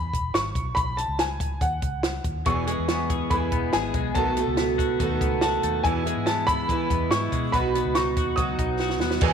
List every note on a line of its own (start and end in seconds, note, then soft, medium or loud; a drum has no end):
0.00 0.10 E2 medium
0.00 0.37 B5 medium
0.14 0.31 E1 medium
0.14 kick medium
0.14 closed hi-hat medium
0.34 0.52 G#1 medium
0.34 0.78 C#6 medium
0.34 snare loud
0.34 closed hi-hat medium
0.55 0.73 B1 medium
0.55 kick medium
0.55 closed hi-hat medium
0.75 1.04 B1 medium
0.75 0.95 B5 medium
0.75 kick medium
0.75 closed hi-hat medium
0.97 1.19 A5 medium
0.97 closed hi-hat medium
1.08 1.58 C#2 medium
1.19 1.63 G#5 medium
1.19 snare medium
1.19 closed hi-hat medium
1.40 kick medium
1.40 closed hi-hat medium
1.61 1.79 D#2 medium
1.61 2.21 F#5 medium
1.61 kick medium
1.61 closed hi-hat medium
1.82 2.19 C#2 medium
1.82 kick medium
1.82 closed hi-hat medium
2.03 snare loud
2.03 closed hi-hat medium
2.24 2.43 D#2 medium
2.24 kick medium
2.24 closed hi-hat medium
2.45 2.73 E1 medium
2.45 2.67 E2 medium
2.45 4.16 E2 medium
2.45 2.67 B2 medium
2.45 2.67 E3 medium
2.45 2.67 G#3 medium
2.45 2.66 B3 medium
2.45 2.66 G#4 medium
2.45 3.33 C#6 medium
2.45 kick medium
2.45 closed hi-hat medium
2.67 3.29 E3 soft
2.67 3.94 G#3 soft
2.67 3.31 G#3 soft
2.67 3.33 B3 soft
2.67 3.30 G#4 soft
2.67 closed hi-hat medium
2.78 3.28 E2 medium
2.88 3.52 B3 medium
2.88 snare medium
2.88 closed hi-hat medium
3.10 3.72 G#4 medium
3.10 kick medium
3.10 closed hi-hat medium
3.30 3.49 E2 medium
3.30 4.15 E3 medium
3.30 4.20 E3 medium
3.30 4.16 G#3 medium
3.30 4.17 B3 medium
3.30 3.74 B5 medium
3.30 kick medium
3.30 closed hi-hat medium
3.34 4.17 G#4 medium
3.52 3.70 E1 medium
3.52 4.40 B3 medium
3.52 kick medium
3.52 closed hi-hat medium
3.73 3.91 G#1 medium
3.73 4.20 G#4 medium
3.73 4.12 G#5 medium
3.73 snare loud
3.73 closed hi-hat medium
3.94 4.12 B1 medium
3.94 4.20 G#3 medium
3.94 kick medium
3.94 closed hi-hat medium
4.15 4.42 B1 medium
4.15 5.85 B2 medium
4.15 4.37 B2 medium
4.15 4.37 D#3 medium
4.15 4.37 A3 medium
4.15 4.37 B3 medium
4.15 4.36 F#4 medium
4.15 5.40 A5 medium
4.15 kick medium
4.15 closed hi-hat medium
4.37 5.62 A3 medium
4.37 5.00 A3 soft
4.37 5.02 B3 soft
4.37 5.00 F#4 soft
4.37 closed hi-hat medium
4.48 4.98 C#2 medium
4.57 5.21 B3 medium
4.57 snare medium
4.57 closed hi-hat medium
4.78 5.41 F#4 medium
4.78 kick medium
4.78 closed hi-hat medium
4.99 5.18 D#2 medium
4.99 5.88 D#3 medium
4.99 5.84 D#3 medium
4.99 5.85 A3 medium
4.99 5.85 B3 medium
4.99 kick medium
4.99 closed hi-hat medium
5.04 5.86 F#4 medium
5.21 5.57 C#2 medium
5.21 6.26 B3 medium
5.21 kick medium
5.21 closed hi-hat medium
5.41 5.89 F#4 medium
5.41 5.81 A5 medium
5.41 snare loud
5.41 closed hi-hat medium
5.63 5.81 D#2 medium
5.63 5.89 A3 medium
5.63 closed hi-hat medium
5.84 7.53 E2 medium
5.84 6.06 E2 medium
5.84 6.12 E2 medium
5.84 6.06 B2 medium
5.84 6.06 E3 medium
5.84 6.06 G#3 medium
5.84 6.05 B3 medium
5.84 6.04 E4 medium
5.84 6.28 G#5 medium
5.84 kick medium
5.84 closed hi-hat medium
6.05 6.67 E3 soft
6.05 7.31 G#3 medium
6.05 6.69 G#3 soft
6.05 6.71 B3 soft
6.05 6.69 E4 soft
6.05 closed hi-hat medium
6.16 6.67 G#2 medium
6.26 6.90 B3 medium
6.26 6.48 A5 medium
6.26 snare medium
6.26 closed hi-hat medium
6.47 7.10 E4 medium
6.47 7.07 B5 loud
6.47 kick medium
6.47 closed hi-hat medium
6.68 7.53 E3 soft
6.68 6.87 E3 loud
6.68 7.58 E3 medium
6.68 7.54 G#3 medium
6.68 7.54 B3 medium
6.68 kick medium
6.68 closed hi-hat medium
6.73 7.55 E4 medium
6.90 7.08 E2 medium
6.90 7.75 B3 medium
6.90 kick medium
6.90 closed hi-hat medium
7.11 7.29 G#2 medium
7.11 7.58 E4 medium
7.11 7.50 C#6 medium
7.11 snare loud
7.11 closed hi-hat medium
7.32 7.50 B2 medium
7.32 7.58 G#3 medium
7.32 kick medium
7.32 closed hi-hat medium
7.52 7.81 B1 medium
7.52 7.75 B2 medium
7.52 9.22 B2 medium
7.52 7.75 F#3 medium
7.52 7.75 B3 medium
7.52 7.74 D#4 medium
7.52 7.73 F#4 medium
7.52 7.96 B5 medium
7.52 kick medium
7.52 closed hi-hat medium
7.74 9.01 B3 medium
7.74 8.38 B3 soft
7.74 8.39 D#4 soft
7.74 8.38 F#4 soft
7.74 closed hi-hat medium
7.85 8.17 C#2 medium
7.95 8.59 D#4 medium
7.95 8.39 C#6 medium
7.95 snare medium
7.95 closed hi-hat medium
8.17 8.35 D#2 medium
8.17 8.79 F#4 medium
8.17 kick medium
8.17 closed hi-hat medium
8.36 8.56 C#2 medium
8.36 9.21 F#3 medium
8.36 9.27 F#3 medium
8.36 9.23 B3 medium
8.36 9.23 D#4 medium
8.36 8.96 D#6 medium
8.36 kick medium
8.36 closed hi-hat medium
8.41 9.23 F#4 medium
8.59 9.01 B1 medium
8.59 9.33 D#4 medium
8.59 kick medium
8.59 closed hi-hat medium
8.79 9.26 F#4 medium
8.79 snare soft
8.90 snare medium
9.00 9.19 D#2 medium
9.00 9.33 B3 medium
9.00 snare medium
9.11 snare medium
9.21 9.33 E2 medium
9.21 9.33 B2 medium
9.21 9.33 D#3 medium
9.21 9.33 G#3 loud
9.21 9.33 B3 medium
9.21 9.33 G#4 loud
9.21 kick loud
9.21 crash medium